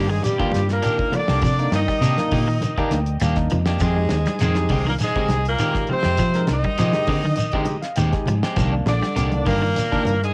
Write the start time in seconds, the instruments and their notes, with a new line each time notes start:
Already playing: fingered electric bass G2
0.07 bass trombone G#2, clean electric guitar D#3, horn section G#4, muted clean electric guitar stroke
0.11 tenor saxophone G#3
0.20 bass trombone G2, horn section G4, muted clean electric guitar stroke, high conga
0.24 tenor saxophone G3, closed hi-hat, shekere
0.39 clean electric guitar D3 D#3 A#3 D4 G4, tine electric piano A#3 D4 F4, kick, closed hi-hat
0.52 fingered electric bass G2, muted clean electric guitar stroke, snare, closed hi-hat, high conga, low conga, shekere
0.67 bass trombone A#2, snare, closed hi-hat
0.72 tenor saxophone A#3, horn section A#4
0.82 clean electric guitar D#3 D4 G4, muted clean electric guitar stroke, closed hi-hat, high conga, shekere
0.98 tine electric piano A#3 D4 D#4, muted clean electric guitar stroke, kick
1.12 bass trombone D3, clean electric guitar F3, tenor saxophone D4, horn section D5, muted clean electric guitar stroke, closed hi-hat, low conga, shekere
1.28 fingered electric bass C2, clean electric guitar A#3 D4 G4, snare
1.42 fingered electric bass C3, clean electric guitar F3, kick, closed hi-hat, shekere
1.58 tine electric piano A#3 D4 D#4, muted clean electric guitar stroke, closed hi-hat
1.71 fingered electric bass G2, bass trombone D#3, tenor saxophone D#4, horn section D#5, snare, closed hi-hat, high conga, shekere
1.88 clean electric guitar G3, muted clean electric guitar stroke, kick, snare, closed hi-hat
2.01 fingered electric bass C3, clean electric guitar C3 D#3 A#3 D4 G4, closed hi-hat, shekere
2.18 tine electric piano A#3 D4 D#4, muted fingered electric bass stroke, muted clean electric guitar stroke, snare, closed hi-hat, high conga
2.31 fingered electric bass A#2, clean electric guitar D3 D#3 A#3 G4, muted clean electric guitar stroke, kick, open hi-hat, low conga, shekere
2.48 clean electric guitar D#3, muted clean electric guitar stroke
2.61 muted clean electric guitar stroke, closed hi-hat, high conga, low conga, shekere
2.77 clean electric guitar D3 D#3 A#3 D4 G4, tine electric piano A#3 D4 D#4, kick, closed hi-hat
2.91 fingered electric bass D2, tine electric piano G5, muted clean electric guitar stroke, snare, closed hi-hat, high conga, shekere
3.06 closed hi-hat
3.20 fingered electric bass D#2, clean electric guitar G3 A#3 D4, tine electric piano F5, closed hi-hat, high conga, shekere
3.24 clean electric guitar G4
3.36 tine electric piano A#3 D4 D#4 D#5, muted clean electric guitar stroke, kick, snare, closed hi-hat
3.50 fingered electric bass F2, clean electric guitar F3, muted clean electric guitar stroke, closed hi-hat, low conga, shekere
3.66 clean electric guitar A#3 D4 G4, snare, closed hi-hat
3.79 fingered electric bass F2, bass trombone G#2, clean electric guitar D#3 F3 C4 G4, tenor saxophone G#3, horn section G#4, muted clean electric guitar stroke, kick, snare, closed hi-hat, shekere
3.96 tine electric piano G#3 D#4 G4, muted clean electric guitar stroke
4.09 fingered electric bass D#2, snare, closed hi-hat, high conga, shekere
4.26 clean electric guitar G3, muted clean electric guitar stroke, snare, closed hi-hat, high conga
4.39 fingered electric bass F2, bass trombone G#2, clean electric guitar C3 D#3 G#3 C4, tenor saxophone G#3, horn section G#4, snare, closed hi-hat, high conga, shekere
4.55 tine electric piano G#3 D#4 G4, muted clean electric guitar stroke, snare, closed hi-hat, high conga
4.69 fingered electric bass C2, clean electric guitar D3 D#3 G#3 C4 G4, kick, open hi-hat, low conga, shekere
4.85 bass trombone A#2, clean electric guitar D#3, horn section A#4, muted clean electric guitar stroke, high conga
4.89 tenor saxophone A#3
4.98 bass trombone G#2, horn section G#4, muted clean electric guitar stroke, closed hi-hat, high conga, shekere
5.04 tenor saxophone G#3
5.15 clean electric guitar D3 D#3 G#3 C4, tine electric piano G#3 D#4 G4, kick, closed hi-hat
5.29 fingered electric bass C2, muted clean electric guitar stroke, snare, closed hi-hat, high conga, low conga, shekere
5.45 bass trombone A#2, tenor saxophone A#3, horn section A#4, closed hi-hat
5.59 clean electric guitar D#3 G#3 C4 G4, closed hi-hat, high conga, shekere
5.74 tine electric piano G#3 D#4 G4, muted clean electric guitar stroke, kick, snare
5.87 clean electric guitar F3, muted clean electric guitar stroke, closed hi-hat, low conga, shekere
5.91 bass trombone C3, tenor saxophone C4, horn section C5
6.03 fingered electric bass F2, clean electric guitar G#3 C4 G4, snare
6.17 fingered electric bass F3, clean electric guitar F3, kick, closed hi-hat, high conga, shekere
6.34 tine electric piano G#3 D#4 A#4, muted clean electric guitar stroke, snare, closed hi-hat
6.47 fingered electric bass C2, snare, closed hi-hat, high conga, shekere
6.51 bass trombone D#3, tenor saxophone D#4, horn section D#5
6.63 clean electric guitar G3, muted clean electric guitar stroke, kick, closed hi-hat, high conga
6.78 clean electric guitar C3 D#3 G#3 C4 G4, fingered electric bass F3, closed hi-hat, high conga, shekere
6.93 tine electric piano G#3 D#4 G4, muted clean electric guitar stroke, muted fingered electric bass stroke, snare, closed hi-hat, high conga
7.07 fingered electric bass D3, clean electric guitar D3 D#3 G#3 C4 G4, kick, open hi-hat, low conga, shekere
7.24 clean electric guitar D#3, muted clean electric guitar stroke, high conga
7.36 muted clean electric guitar stroke, closed hi-hat, high conga, shekere
7.52 clean electric guitar D3 D#3 G#3 C4 G4, tine electric piano G#3 D#4 G4, kick, closed hi-hat
7.65 tine electric piano D#5, muted clean electric guitar stroke, closed hi-hat, high conga, low conga, shekere
7.82 tine electric piano F5, snare, closed hi-hat
7.95 fingered electric bass D#2, clean electric guitar D#3 G#3 C4 G4, tine electric piano G5, closed hi-hat, high conga, shekere
8.12 tine electric piano G#3 D#4 G4 G#5, muted clean electric guitar stroke, kick, snare, closed hi-hat
8.26 fingered electric bass G#2, clean electric guitar F3, muted clean electric guitar stroke, closed hi-hat, low conga, shekere
8.43 clean electric guitar G#3 C4 G4, snare, closed hi-hat
8.56 fingered electric bass C2, clean electric guitar D#3 F3 A#3 D4 G4, kick, snare, closed hi-hat, high conga, shekere
8.71 tine electric piano D#3 A#3 D4, muted clean electric guitar stroke
8.86 fingered electric bass A#1, bass trombone D3, tenor saxophone D4, horn section D5, snare, closed hi-hat, high conga, shekere
9.01 clean electric guitar G3, muted clean electric guitar stroke, snare, closed hi-hat, high conga
9.16 fingered electric bass C2, clean electric guitar C3 D#3 A#3 D4 G4, closed hi-hat, high conga, shekere
9.31 tine electric piano D#3 A#3 D4, muted clean electric guitar stroke, closed hi-hat, high conga
9.45 fingered electric bass G2, bass trombone A#2, clean electric guitar D3 D#3 A#3 D4 G4, tenor saxophone A#3, horn section A#4, kick, open hi-hat, low conga, shekere
9.62 clean electric guitar D#3, muted clean electric guitar stroke
9.76 muted clean electric guitar stroke, closed hi-hat, high conga, shekere
9.91 clean electric guitar D3 D#3 A#3 D4 G4, tine electric piano D#3 A#3 D4, kick, closed hi-hat
10.05 fingered electric bass G2, muted clean electric guitar stroke, closed hi-hat, high conga, low conga, shekere
10.22 bass trombone G#2, tenor saxophone G#3, horn section G#4, closed hi-hat